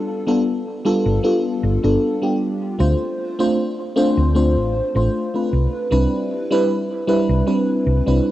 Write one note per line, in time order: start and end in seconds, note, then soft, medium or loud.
0.00 0.23 G3 medium
0.00 0.23 B3 medium
0.00 0.23 D4 medium
0.00 0.23 F4 medium
0.00 0.24 A4 medium
0.27 0.45 G3 medium
0.27 0.45 B3 medium
0.27 0.46 D4 medium
0.27 0.46 F4 medium
0.27 0.46 A4 loud
0.85 1.20 G3 medium
0.85 1.20 B3 medium
0.85 1.20 D4 medium
0.85 1.20 F4 medium
0.85 1.20 A4 loud
1.06 1.17 G1 medium
1.23 1.78 G3 medium
1.23 1.79 B3 medium
1.23 1.79 D4 medium
1.23 1.79 F4 medium
1.23 1.79 A4 medium
1.63 1.76 G1 medium
1.83 1.95 G1 medium
1.83 2.18 G3 medium
1.83 2.18 B3 medium
1.83 2.18 D4 medium
1.83 2.18 F4 medium
1.83 2.18 A4 medium
2.22 2.75 G3 medium
2.22 2.75 B3 medium
2.22 2.76 D4 medium
2.22 2.76 F4 medium
2.22 2.76 G4 medium
2.79 2.93 D2 loud
2.79 3.34 A3 medium
2.79 3.34 C4 medium
2.79 3.34 D4 medium
2.79 3.35 F4 medium
2.79 3.35 C5 medium
3.39 3.57 A3 medium
3.39 3.57 C4 medium
3.39 3.57 D4 medium
3.39 3.57 F4 medium
3.39 3.58 C5 loud
3.96 4.31 A3 medium
3.96 4.31 C4 medium
3.96 4.31 D4 medium
3.96 4.31 F4 medium
3.96 4.32 C5 loud
4.17 4.57 D2 medium
4.34 4.90 A3 medium
4.34 4.90 C4 medium
4.34 4.90 D4 medium
4.34 4.91 F4 medium
4.34 4.91 C5 medium
4.57 4.79 A1 medium
4.95 5.07 A1 loud
4.95 5.29 A3 medium
4.95 5.29 C4 medium
4.95 5.30 D4 medium
4.95 5.30 F4 medium
4.95 5.30 C5 medium
5.34 5.87 A3 medium
5.34 5.87 C4 medium
5.34 5.87 D4 medium
5.34 5.88 F4 medium
5.34 5.88 B4 medium
5.53 5.65 C2 medium
5.90 6.04 C2 loud
5.90 6.46 G3 medium
5.90 6.46 C4 medium
5.90 6.46 D4 medium
5.90 6.47 E4 medium
5.90 6.47 B4 medium
6.50 6.69 G3 medium
6.50 6.69 C4 medium
6.50 6.69 D4 medium
6.50 6.69 E4 medium
6.50 6.69 B4 loud
7.07 7.43 G3 medium
7.07 7.43 C4 medium
7.07 7.43 D4 medium
7.07 7.43 E4 medium
7.07 7.43 B4 loud
7.29 7.40 C2 medium
7.47 8.02 G3 medium
7.47 8.02 C4 medium
7.47 8.02 D4 medium
7.47 8.02 E4 medium
7.47 8.02 B4 medium
7.87 7.99 C2 medium
8.06 8.18 C2 medium
8.06 8.31 G3 medium
8.06 8.31 C4 medium
8.06 8.31 D4 medium
8.06 8.31 E4 medium
8.06 8.31 B4 medium